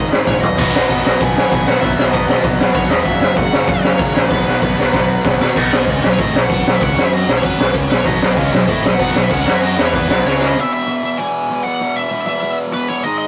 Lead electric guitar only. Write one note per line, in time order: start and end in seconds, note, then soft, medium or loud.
0.27 0.43 C#5 medium
0.41 0.56 D#5 medium
0.58 0.74 D#5 medium
0.75 1.03 D#5 medium
1.07 1.22 D#5 loud
1.22 1.69 G#5 loud
1.68 1.81 F#5 medium
1.81 1.98 E5 loud
1.98 2.28 D#5 medium
2.29 2.58 D#5 loud
2.74 2.90 C#5 medium
2.90 3.06 D#5 medium
3.03 3.19 E5 loud
3.20 3.37 E5 medium
3.37 3.69 F#5 medium
3.69 4.14 C#5 medium
4.15 5.20 B4 medium
5.42 5.49 B4 medium
5.49 5.57 C#5 loud
5.57 6.09 D#5 loud
6.13 6.19 C#5 medium
6.21 6.44 D#5 medium
6.44 6.75 F#5 loud
6.75 6.83 E5 loud
6.83 7.04 F#5 loud
7.05 7.12 E5 loud
7.14 7.35 D#5 loud
7.37 7.44 C#5 loud
7.45 7.73 B4 medium
7.91 7.98 B4 medium
7.98 8.06 C#5 loud
8.05 8.68 D#5 loud
8.69 8.93 D#5 medium
8.94 9.24 F#5 loud
9.24 9.30 E5 medium
9.31 9.53 F#5 loud
9.54 9.62 E5 medium
9.62 9.84 D#5 medium
9.85 9.92 C#5 medium
9.95 10.23 B4 medium
10.27 10.41 C#5 medium
10.42 10.48 B4 medium
10.42 10.60 D#5 medium
10.60 10.72 E5 loud
10.73 11.02 E5 loud
11.03 11.19 E5 loud
11.18 11.63 G#5 loud
11.64 11.96 F#5 loud
11.96 12.25 E5 loud
12.27 12.56 E5 loud
12.73 12.88 B4 loud
12.89 13.03 C#5 medium
13.03 13.17 D#5 loud
13.18 13.28 D#5 loud